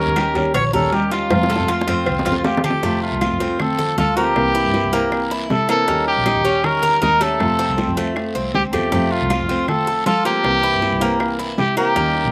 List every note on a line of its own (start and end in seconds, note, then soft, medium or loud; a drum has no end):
0.00 0.15 D#3 medium
0.00 0.15 G3 medium
0.00 0.15 C#4 medium
0.00 0.16 C#4 medium
0.00 0.16 G4 medium
0.00 0.55 A#4 loud
0.06 0.34 D#2 medium
0.16 0.34 D#3 soft
0.16 0.35 G3 soft
0.16 0.35 C#4 medium
0.16 0.53 G4 medium
0.16 0.34 G4 medium
0.16 cowbell medium
0.16 high conga loud
0.16 short guiro medium
0.16 claves medium
0.35 0.53 D#2 medium
0.35 0.54 G3 medium
0.35 0.54 C#4 medium
0.35 0.54 G4 medium
0.35 cowbell medium
0.35 short guiro medium
0.54 0.72 A#1 loud
0.54 0.73 C#5 medium
0.54 0.64 C#5 medium
0.54 muted nylon-string guitar stroke medium
0.54 cowbell loud
0.54 high conga soft
0.54 low conga medium
0.54 long guiro medium
0.54 claves medium
0.73 1.28 D#2 medium
0.73 0.92 G3 medium
0.73 0.92 C#4 medium
0.73 0.92 G4 medium
0.73 0.95 A4 medium
0.73 1.10 A#4 medium
0.73 high conga soft
0.92 1.30 D#3 medium
0.92 1.30 G3 medium
0.92 1.30 C#4 medium
0.92 1.12 G4 medium
0.92 1.31 G4 medium
0.92 cowbell medium
0.92 high conga medium
0.92 short guiro medium
1.11 1.48 F4 medium
1.11 2.41 F4 loud
1.11 cowbell medium
1.11 high conga medium
1.11 short guiro medium
1.30 1.57 F2 loud
1.30 1.68 C3 medium
1.30 1.67 F3 medium
1.30 1.68 A3 medium
1.30 1.69 C4 medium
1.30 1.69 F4 medium
1.30 cowbell loud
1.30 high bongo medium
1.30 high conga loud
1.30 long guiro medium
1.30 claves medium
1.43 high bongo loud
1.50 1.68 A4 medium
1.50 cowbell medium
1.50 high conga medium
1.56 1.86 F2 medium
1.56 high bongo medium
1.68 1.87 F3 soft
1.68 1.87 A3 medium
1.68 1.87 C4 soft
1.68 1.87 F4 medium
1.68 1.86 F4 soft
1.68 cowbell medium
1.68 short guiro medium
1.81 high bongo medium
1.87 2.05 F2 medium
1.87 2.05 F3 medium
1.87 2.06 A3 medium
1.87 2.25 C4 medium
1.87 2.06 C4 medium
1.87 2.06 F4 medium
1.87 cowbell medium
1.87 short guiro medium
2.06 2.25 C2 medium
2.06 muted nylon-string guitar stroke medium
2.06 cowbell loud
2.06 low conga medium
2.06 long guiro medium
2.06 claves medium
2.19 low bongo loud
2.25 2.80 F2 medium
2.25 2.43 F3 medium
2.25 2.44 A3 medium
2.25 2.44 C4 medium
2.25 2.44 F4 medium
2.25 2.63 F4 medium
2.25 cowbell medium
2.25 low conga medium
2.32 low bongo medium
2.44 2.82 F3 soft
2.44 2.82 A3 medium
2.44 2.83 C4 medium
2.44 2.83 F4 medium
2.44 2.63 G4 medium
2.44 cowbell medium
2.44 low bongo loud
2.44 short guiro medium
2.57 low bongo loud
2.64 3.00 G4 loud
2.64 2.82 A4 medium
2.64 low conga loud
2.64 short guiro medium
2.64 claves medium
2.70 low bongo medium
2.82 3.10 F2 medium
2.82 3.20 C3 medium
2.82 3.20 F3 medium
2.82 3.20 A3 medium
2.82 3.21 A3 medium
2.82 3.21 C4 medium
2.82 3.21 F4 medium
2.82 high bongo medium
2.82 long guiro medium
3.02 3.63 F4 medium
3.02 high bongo soft
3.02 high conga soft
3.11 3.29 C2 medium
3.21 3.39 F3 medium
3.21 3.40 A3 soft
3.21 3.39 C4 soft
3.21 3.40 F4 medium
3.21 3.39 F4 soft
3.21 high bongo medium
3.21 high conga loud
3.21 short guiro medium
3.21 claves medium
3.30 3.94 F2 medium
3.40 3.58 F3 medium
3.40 3.59 A3 medium
3.40 3.77 C4 medium
3.40 3.59 C4 medium
3.40 3.58 F4 medium
3.40 short guiro medium
3.59 3.96 F3 medium
3.59 3.97 A3 soft
3.59 3.97 C4 medium
3.59 3.97 F4 medium
3.59 3.98 A4 loud
3.59 high bongo medium
3.59 high conga soft
3.59 low conga medium
3.59 long guiro medium
3.59 claves medium
3.79 3.97 A4 medium
3.79 high bongo soft
3.79 high conga soft
3.79 low conga medium
3.97 4.33 D2 medium
3.97 4.16 F4 medium
3.97 4.16 A4 loud
3.97 muted nylon-string guitar stroke medium
3.97 high bongo soft
3.97 low bongo medium
3.97 high conga medium
3.97 short guiro medium
4.16 4.35 F3 medium
4.16 4.35 A3 medium
4.16 4.54 A#3 medium
4.16 4.35 C4 medium
4.16 4.35 F4 medium
4.16 5.27 G4 loud
4.16 high bongo soft
4.16 short guiro medium
4.35 4.62 C2 medium
4.35 4.73 C3 medium
4.35 4.72 E3 medium
4.35 4.73 A#3 medium
4.35 4.74 C4 medium
4.35 4.74 E4 medium
4.35 high bongo medium
4.35 high conga soft
4.35 long guiro medium
4.35 claves medium
4.55 4.92 E4 medium
4.55 high bongo soft
4.55 high conga soft
4.64 4.83 G2 medium
4.73 4.92 E3 soft
4.73 4.92 A#3 soft
4.73 4.92 C4 soft
4.73 4.91 E4 medium
4.73 high bongo medium
4.73 high conga medium
4.73 short guiro medium
4.83 5.47 C2 medium
4.92 5.10 E3 soft
4.92 5.30 A#3 medium
4.92 5.11 A#3 medium
4.92 5.11 C4 medium
4.92 5.11 E4 medium
4.92 high conga soft
4.92 short guiro medium
5.11 5.49 E3 soft
5.11 5.49 A#3 medium
5.11 5.50 C4 medium
5.11 5.49 E4 medium
5.11 high bongo medium
5.11 high conga soft
5.11 long guiro medium
5.11 claves medium
5.31 5.68 E4 medium
5.31 high bongo soft
5.31 high conga soft
5.50 5.86 C3 medium
5.50 5.68 A4 loud
5.50 muted nylon-string guitar stroke medium
5.50 high bongo soft
5.50 low bongo medium
5.50 high conga medium
5.50 short guiro medium
5.68 5.87 E3 medium
5.68 5.87 A#3 medium
5.68 5.87 C4 medium
5.68 5.87 E4 medium
5.68 6.05 A4 loud
5.68 high bongo soft
5.68 short guiro medium
5.68 claves medium
5.87 6.15 D#2 medium
5.87 6.24 D#3 medium
5.87 6.25 G3 medium
5.87 6.25 A#3 medium
5.87 6.26 C#4 medium
5.87 6.26 G4 medium
5.87 high bongo medium
5.87 high conga soft
5.87 long guiro medium
6.07 6.66 G4 loud
6.07 high bongo soft
6.07 high conga soft
6.16 6.34 A#1 medium
6.25 6.44 D#3 soft
6.25 6.44 G3 medium
6.25 6.44 C#4 medium
6.25 6.44 D#4 medium
6.25 6.43 G4 medium
6.25 high bongo medium
6.25 high conga loud
6.25 short guiro medium
6.25 claves medium
6.35 6.98 D#2 medium
6.44 6.63 G3 medium
6.44 6.82 C#4 medium
6.44 6.63 C#4 medium
6.44 6.63 G4 medium
6.44 short guiro medium
6.64 7.00 D#3 soft
6.64 7.01 G3 soft
6.64 7.01 C#4 medium
6.64 7.01 G4 medium
6.64 7.02 A#4 loud
6.64 high bongo medium
6.64 high conga soft
6.64 low conga medium
6.64 long guiro medium
6.64 claves medium
6.83 7.01 A#4 medium
6.83 high bongo soft
6.83 high conga soft
6.83 low conga medium
7.01 7.38 D#2 medium
7.01 7.20 D#4 medium
7.01 7.24 A#4 loud
7.01 muted nylon-string guitar stroke medium
7.01 high bongo soft
7.01 low bongo medium
7.01 high conga medium
7.01 short guiro medium
7.20 7.40 G3 soft
7.20 7.58 A3 medium
7.20 7.40 C#4 medium
7.20 7.39 G4 medium
7.20 8.09 A4 loud
7.20 high bongo soft
7.20 short guiro medium
7.39 7.67 F2 medium
7.39 7.77 C3 medium
7.39 7.76 F3 medium
7.39 7.77 A3 medium
7.39 7.78 C4 medium
7.39 7.78 F4 medium
7.39 high bongo medium
7.39 high conga soft
7.39 long guiro medium
7.39 claves medium
7.59 7.96 C4 medium
7.59 high bongo soft
7.59 high conga soft
7.68 7.86 C2 medium
7.78 7.96 F3 soft
7.78 7.96 A3 soft
7.78 7.96 C4 soft
7.78 7.96 F4 medium
7.78 high bongo medium
7.78 high conga loud
7.78 short guiro medium
7.87 8.32 F2 medium
7.97 8.14 F3 medium
7.97 8.34 A3 medium
7.97 8.15 A3 medium
7.97 8.15 C4 medium
7.97 8.15 F4 medium
7.97 high conga soft
7.97 short guiro medium
8.16 8.53 F3 soft
8.16 8.54 A3 soft
8.16 8.54 C4 medium
8.16 8.54 F4 medium
8.16 high bongo medium
8.16 high conga soft
8.16 long guiro medium
8.16 claves medium
8.35 8.52 C2 medium
8.35 8.72 C4 medium
8.35 high bongo soft
8.35 high conga soft
8.54 8.71 D2 medium
8.54 8.63 G4 loud
8.54 muted nylon-string guitar stroke medium
8.54 high bongo soft
8.54 low bongo medium
8.54 high conga medium
8.54 short guiro medium
8.73 8.90 E2 medium
8.73 8.91 F3 medium
8.73 8.91 A3 medium
8.73 8.92 A3 medium
8.73 8.92 C4 medium
8.73 8.91 F4 medium
8.73 9.13 G4 medium
8.73 high bongo soft
8.73 short guiro medium
8.73 claves medium
8.92 9.19 F2 medium
8.92 9.29 C3 medium
8.92 9.29 F3 medium
8.92 9.29 A3 medium
8.92 9.30 C4 medium
8.92 9.30 F4 medium
8.92 high bongo medium
8.92 high conga soft
8.92 long guiro medium
9.11 9.68 F4 loud
9.11 high bongo soft
9.11 high conga soft
9.21 9.39 C2 loud
9.30 9.48 F3 soft
9.30 9.48 A3 soft
9.30 9.48 C4 medium
9.30 9.48 F4 medium
9.30 high bongo medium
9.30 high conga medium
9.30 short guiro medium
9.30 claves medium
9.39 10.02 F2 medium
9.49 9.67 F3 medium
9.49 9.68 A3 medium
9.49 9.86 C4 medium
9.49 9.68 C4 medium
9.49 9.67 F4 medium
9.49 short guiro medium
9.68 10.05 F3 soft
9.68 10.05 A3 soft
9.68 10.05 C4 soft
9.68 10.05 F4 medium
9.68 10.04 A4 loud
9.68 high bongo medium
9.68 high conga soft
9.68 low conga medium
9.68 long guiro medium
9.68 claves medium
9.87 10.06 A4 medium
9.87 high bongo soft
9.87 high conga soft
10.06 10.42 F3 medium
10.06 10.24 F4 medium
10.06 10.24 A4 loud
10.06 muted nylon-string guitar stroke medium
10.06 high bongo soft
10.06 low bongo medium
10.06 high conga medium
10.06 short guiro medium
10.25 10.44 F3 medium
10.25 10.44 A3 medium
10.25 10.62 A#3 medium
10.25 10.44 C4 medium
10.25 10.43 F4 medium
10.25 11.35 G4 loud
10.25 high bongo soft
10.25 short guiro medium
10.44 10.71 C2 medium
10.44 10.81 C3 medium
10.44 10.81 E3 medium
10.44 10.81 A#3 medium
10.44 10.82 C4 medium
10.44 10.82 E4 medium
10.44 high bongo medium
10.44 high conga soft
10.44 long guiro medium
10.44 claves medium
10.63 11.00 E4 medium
10.63 high bongo soft
10.63 high conga soft
10.72 10.91 G2 medium
10.82 11.00 E3 soft
10.82 11.00 A#3 soft
10.82 11.00 C4 medium
10.82 10.99 E4 medium
10.82 high bongo medium
10.82 high conga medium
10.82 short guiro medium
10.91 11.55 C2 medium
11.00 11.19 E3 medium
11.00 11.38 A#3 medium
11.00 11.19 A#3 medium
11.00 11.19 C4 medium
11.00 11.19 E4 medium
11.00 high conga soft
11.00 short guiro medium
11.20 11.57 E3 soft
11.20 11.57 A#3 soft
11.20 11.57 C4 medium
11.20 11.58 E4 medium
11.20 high bongo medium
11.20 high conga soft
11.20 long guiro medium
11.20 claves medium
11.39 11.76 E4 medium
11.39 high bongo soft
11.39 high conga soft
11.58 11.94 C3 medium
11.58 11.76 G4 loud
11.58 muted nylon-string guitar stroke medium
11.58 high bongo soft
11.58 low bongo medium
11.58 high conga medium
11.58 short guiro medium
11.77 11.95 E3 medium
11.77 11.95 A#3 medium
11.77 11.96 A#3 medium
11.77 11.95 C4 medium
11.77 11.95 E4 medium
11.77 12.30 G4 loud
11.77 high bongo soft
11.77 short guiro medium
11.77 claves medium
11.96 12.23 D#2 loud
11.96 12.32 D#3 medium
11.96 12.32 G3 medium
11.96 12.32 A#3 medium
11.96 12.32 C#4 medium
11.96 12.32 G4 medium
11.96 high bongo medium
11.96 high conga soft
11.96 long guiro medium
12.15 high bongo soft
12.15 high conga soft
12.24 12.32 A#1 medium